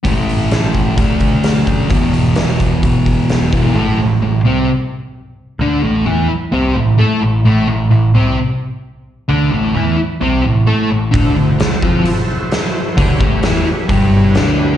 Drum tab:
HH |oooooooo|oooooooo|--------|--------|
SD |--o---o-|--o---o-|--------|--------|
BD |o--ooo-o|o--ooo-o|--------|--------|

HH |--------|--------|o-o-o-o-|o-o-o-o-|
SD |--------|--------|--o---o-|--o---o-|
BD |--------|--------|o--o----|oo--o---|